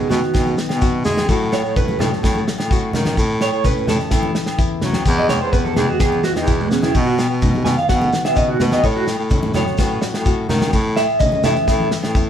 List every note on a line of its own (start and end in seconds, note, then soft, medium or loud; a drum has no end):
0.00 0.33 D#4 medium
0.09 0.21 B2 loud
0.09 1.25 D#3 medium
0.09 0.57 B3 medium
0.09 0.54 F#4 medium
0.09 snare medium
0.09 low conga medium
0.09 low agogo medium
0.09 shekere medium
0.23 snare soft
0.23 shekere soft
0.34 0.56 B2 medium
0.34 1.04 D#4 medium
0.34 kick medium
0.34 snare medium
0.34 low agogo medium
0.34 shekere medium
0.46 high conga medium
0.46 shekere soft
0.58 1.26 B3 medium
0.58 snare medium
0.58 shekere medium
0.69 1.02 B2 medium
0.69 snare medium
0.69 low agogo medium
0.81 1.26 F#2 medium
0.81 1.26 F#4 medium
0.81 kick medium
0.81 shekere medium
1.04 1.26 G#3 loud
1.04 1.26 D#4 medium
1.04 snare medium
1.04 low conga medium
1.04 shekere medium
1.17 snare medium
1.17 high conga medium
1.17 low agogo medium
1.28 2.69 A2 medium
1.28 1.61 A2 loud
1.28 1.98 F#3 medium
1.28 2.00 A3 medium
1.28 2.22 F#4 medium
1.28 muted nylon-string guitar stroke medium
1.28 kick medium
1.28 shekere medium
1.40 shekere soft
1.52 1.75 C#5 loud
1.52 snare medium
1.52 low agogo medium
1.52 shekere medium
1.64 1.96 A2 medium
1.64 shekere soft
1.76 2.93 C#4 medium
1.76 1.99 B4 medium
1.76 kick medium
1.76 low conga medium
1.76 shekere medium
1.88 high conga medium
1.88 shekere soft
1.99 2.11 A2 loud
1.99 3.15 F#3 medium
1.99 2.46 A3 medium
1.99 2.44 A4 medium
1.99 snare medium
1.99 low conga medium
1.99 low agogo medium
1.99 shekere medium
2.13 snare soft
2.23 2.45 A2 loud
2.23 2.70 F#4 medium
2.23 kick medium
2.23 snare medium
2.23 low agogo medium
2.23 shekere loud
2.35 high conga medium
2.35 shekere soft
2.47 3.15 A3 medium
2.47 snare medium
2.47 shekere medium
2.58 2.91 A2 medium
2.58 snare medium
2.58 low agogo medium
2.70 3.16 A2 medium
2.70 3.15 F#4 medium
2.70 kick loud
2.70 shekere medium
2.93 3.15 D#3 medium
2.93 3.15 C#4 medium
2.93 snare medium
2.93 low conga medium
2.93 shekere medium
3.05 snare medium
3.05 high conga medium
3.05 low agogo medium
3.17 4.59 A2 medium
3.17 3.50 A2 loud
3.17 kick medium
3.17 shekere loud
3.30 shekere soft
3.41 3.64 C#5 loud
3.41 snare medium
3.41 low agogo medium
3.41 shekere medium
3.53 3.85 A2 medium
3.53 shekere soft
3.64 4.82 C#4 medium
3.64 3.88 B4 medium
3.64 kick medium
3.64 low conga medium
3.64 shekere loud
3.77 shekere soft
3.87 3.99 A2 loud
3.87 5.03 E3 medium
3.87 4.34 A3 medium
3.87 4.32 A4 medium
3.87 snare medium
3.87 low conga medium
3.87 low agogo medium
3.87 shekere medium
4.00 snare soft
4.00 shekere soft
4.11 4.33 A2 medium
4.11 4.57 E4 medium
4.11 kick medium
4.11 snare medium
4.11 low agogo medium
4.11 shekere medium
4.23 high conga medium
4.35 5.03 A3 medium
4.35 snare medium
4.35 shekere medium
4.46 snare medium
4.46 low agogo medium
4.58 5.04 E2 medium
4.58 5.06 E4 medium
4.58 kick medium
4.58 shekere medium
4.81 5.04 F#3 medium
4.81 5.04 C#4 medium
4.81 snare medium
4.81 low conga medium
4.81 shekere medium
4.93 snare medium
4.93 high conga medium
4.93 low agogo medium
4.93 shekere soft
5.06 5.38 E2 loud
5.06 6.95 E2 medium
5.06 5.74 E3 medium
5.06 5.76 G#3 medium
5.06 5.52 B3 medium
5.06 6.93 G#4 medium
5.06 kick medium
5.06 shekere loud
5.18 5.29 D#5 loud
5.18 high conga medium
5.18 shekere soft
5.29 5.41 C#5 loud
5.29 snare medium
5.29 low conga medium
5.29 low agogo medium
5.29 shekere medium
5.41 5.74 E2 medium
5.41 5.52 C5 medium
5.41 shekere soft
5.52 6.00 B3 medium
5.52 5.65 B4 medium
5.52 kick medium
5.52 shekere loud
5.64 5.76 A4 medium
5.64 high conga medium
5.64 shekere soft
5.76 5.88 E2 loud
5.76 6.92 E3 medium
5.76 6.23 G#3 medium
5.76 5.88 G#4 medium
5.76 snare medium
5.76 low conga medium
5.76 low agogo medium
5.76 shekere medium
5.89 6.00 F#4 medium
5.89 shekere soft
5.99 6.22 E2 medium
5.99 6.46 B3 medium
5.99 6.23 G#4 medium
5.99 kick medium
5.99 snare medium
5.99 low agogo medium
5.99 shekere medium
6.12 high conga medium
6.12 shekere soft
6.24 6.92 G#3 medium
6.24 6.36 F#4 medium
6.24 snare medium
6.24 shekere medium
6.35 6.68 E2 medium
6.35 6.48 D#4 medium
6.35 snare medium
6.35 low agogo medium
6.35 shekere soft
6.47 6.92 B2 medium
6.47 6.70 B3 medium
6.47 6.59 E4 medium
6.47 kick medium
6.47 shekere medium
6.59 6.70 G#3 medium
6.59 shekere soft
6.70 6.93 C#3 medium
6.70 6.83 B3 medium
6.70 7.42 B3 medium
6.70 snare medium
6.70 shekere medium
6.82 6.95 E4 loud
6.82 snare medium
6.82 high conga medium
6.82 low agogo medium
6.82 shekere soft
6.94 7.65 B2 medium
6.94 7.27 B2 loud
6.94 7.07 D#4 medium
6.94 kick medium
6.94 shekere loud
7.07 7.14 F#4 loud
7.07 shekere soft
7.18 snare medium
7.18 low agogo medium
7.18 shekere medium
7.30 7.62 B2 medium
7.42 8.81 D#4 medium
7.42 kick medium
7.42 low conga medium
7.42 shekere medium
7.54 high conga medium
7.54 shekere soft
7.65 7.76 B2 loud
7.65 8.81 D#3 medium
7.65 8.11 B3 medium
7.65 7.76 G#5 medium
7.65 snare medium
7.65 low conga medium
7.65 low agogo medium
7.65 shekere medium
7.77 7.89 F5 medium
7.77 snare soft
7.77 shekere soft
7.89 8.11 B2 loud
7.89 8.81 F#4 medium
7.89 8.22 F#5 medium
7.89 kick medium
7.89 snare medium
7.89 low agogo medium
7.89 shekere medium
8.01 high conga medium
8.01 shekere soft
8.13 8.81 B3 medium
8.13 snare medium
8.13 shekere medium
8.23 8.56 B2 medium
8.23 8.36 E5 medium
8.23 snare medium
8.23 low agogo medium
8.36 8.58 C#3 medium
8.36 8.48 D#5 medium
8.36 kick medium
8.36 shekere loud
8.49 8.60 F#4 medium
8.58 8.83 B2 medium
8.58 8.81 B2 loud
8.58 8.73 B4 loud
8.58 snare medium
8.58 low conga medium
8.58 shekere medium
8.72 8.84 D#5 loud
8.72 snare medium
8.72 high conga medium
8.72 low agogo medium
8.72 shekere soft
8.84 10.24 A2 medium
8.84 9.17 A2 loud
8.84 8.96 C#5 medium
8.84 kick medium
8.84 shekere loud
8.96 9.03 F#4 medium
8.96 shekere soft
9.07 snare medium
9.07 low agogo medium
9.07 shekere medium
9.19 9.51 A2 medium
9.19 shekere soft
9.30 10.49 C#4 medium
9.30 kick medium
9.30 low conga medium
9.30 shekere loud
9.42 high conga medium
9.42 shekere soft
9.54 9.65 A2 loud
9.54 10.70 F#3 medium
9.54 10.02 A3 medium
9.54 9.79 C#5 medium
9.54 snare medium
9.54 low conga medium
9.54 low agogo medium
9.54 shekere medium
9.66 snare soft
9.66 shekere soft
9.78 10.00 A2 medium
9.78 10.25 F#4 medium
9.78 10.01 B4 medium
9.78 kick medium
9.78 snare medium
9.78 low agogo medium
9.78 shekere medium
9.90 shekere soft
10.01 10.71 A3 medium
10.01 muted clean electric guitar stroke medium
10.01 snare medium
10.01 shekere medium
10.14 10.46 A2 medium
10.14 snare medium
10.14 low agogo medium
10.25 10.72 A2 medium
10.25 10.71 F#4 medium
10.25 kick medium
10.25 shekere loud
10.49 10.71 D#3 loud
10.49 10.71 C#4 medium
10.49 snare medium
10.49 low conga medium
10.49 shekere medium
10.61 snare medium
10.61 high conga medium
10.61 low agogo medium
10.61 shekere soft
10.73 11.06 A2 loud
10.73 12.15 A2 medium
10.73 kick medium
10.73 snare soft
10.73 shekere medium
10.85 shekere soft
10.96 11.20 E5 loud
10.96 snare medium
10.96 low agogo medium
10.96 shekere medium
11.09 shekere soft
11.20 12.30 C#4 medium
11.20 11.43 D#5 medium
11.20 kick medium
11.20 low conga medium
11.20 shekere loud
11.32 high conga medium
11.32 shekere soft
11.44 11.55 A2 loud
11.44 12.30 E3 medium
11.44 11.91 A3 medium
11.44 11.88 E5 loud
11.44 snare medium
11.44 low conga medium
11.44 low agogo medium
11.44 shekere medium
11.56 snare soft
11.56 shekere soft
11.67 11.89 A2 loud
11.67 12.16 E4 medium
11.67 kick medium
11.67 snare medium
11.67 low agogo medium
11.67 shekere medium
11.80 high conga medium
11.80 shekere soft
11.91 12.30 A3 medium
11.91 snare medium
11.91 shekere medium
12.03 12.30 A2 medium
12.03 snare medium
12.03 low agogo medium
12.15 12.30 E2 medium
12.15 12.30 E4 medium
12.15 kick loud
12.15 shekere medium